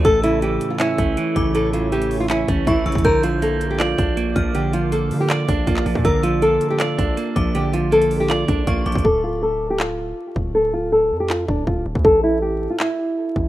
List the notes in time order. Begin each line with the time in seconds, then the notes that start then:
Already playing: A4
0.05 A1 A2 A4 C#5 E5 C#6 E6, kick, closed hi-hat
0.23 C#3 E4, closed hi-hat
0.42 E3 G4, closed hi-hat
0.61 closed hi-hat
0.70 F4
0.80 C#4 E4, clap, closed hi-hat
0.98 A1 A3, kick, closed hi-hat
1.17 E3, closed hi-hat
1.36 A1 C#3 D6, kick, closed hi-hat
1.55 A2 A4, closed hi-hat
1.73 C#3 F4, closed hi-hat
1.92 E3 G4, closed hi-hat
2.02 closed hi-hat
2.11 open hi-hat
2.20 F4
2.30 C#4 E4, clap, closed hi-hat
2.48 A1 A3 C#4, kick, closed hi-hat
2.67 A1 E3 E4 C#6, kick, closed hi-hat
2.86 A1 C#3 E6, closed hi-hat
2.92 A1, kick, closed hi-hat
2.98 closed hi-hat
3.05 A#1 D3 A#4 D5 F5 D6 G6, kick, closed hi-hat
3.23 F3 F4, closed hi-hat
3.42 A#3 A4, closed hi-hat
3.61 closed hi-hat
3.70 G4
3.79 F4 D5, clap, closed hi-hat
3.98 A#1 D4, kick, closed hi-hat
4.17 A#3, closed hi-hat
4.36 A#1 F3 F6, kick, closed hi-hat
4.55 D3 G4, closed hi-hat
4.73 F3 F4, closed hi-hat
4.92 A#3 A4, closed hi-hat
5.11 D3, open hi-hat
5.20 G4
5.30 F4 D5, clap, closed hi-hat
5.48 A#1 D4, kick, closed hi-hat
5.67 A#1 A#3 F4, kick, closed hi-hat
5.77 clap
5.86 A#1 F3, open hi-hat
5.95 A#2, kick
6.05 A#1 D3 A#4 E5 E6, kick, closed hi-hat
6.23 F3 F4, closed hi-hat
6.42 A#3 A4, closed hi-hat
6.61 closed hi-hat
6.70 G4
6.80 F4 D5, clap, closed hi-hat
6.98 A#1 D4, kick, closed hi-hat
7.17 A#3, closed hi-hat
7.36 A#1 F3 D6, kick, closed hi-hat
7.55 D3 G4, closed hi-hat
7.73 F3 F4, closed hi-hat
7.92 A#3 A4, closed hi-hat
8.02 closed hi-hat
8.11 open hi-hat
8.20 G4
8.30 F4 D5, clap, closed hi-hat
8.48 A#1 D4, kick, closed hi-hat
8.67 A#1 A#3 F4 C#6, kick, closed hi-hat
8.86 A#1 F3 D6, closed hi-hat
8.92 A#1, kick, closed hi-hat
8.98 closed hi-hat
9.04 D1 A4, kick
9.24 F4
9.43 A4
9.70 G4
9.80 F4, clap
10.36 D1, kick
10.55 A4
10.73 F4
10.92 A4
11.11 F2
11.20 G4
11.30 F4, clap
11.48 D1 D4, kick
11.67 D1 F4, kick
11.86 D1
11.95 D2, kick
12.05 A1 A4, kick
12.23 E4
12.42 G4
12.70 F4
12.80 E4, clap
13.36 A1, kick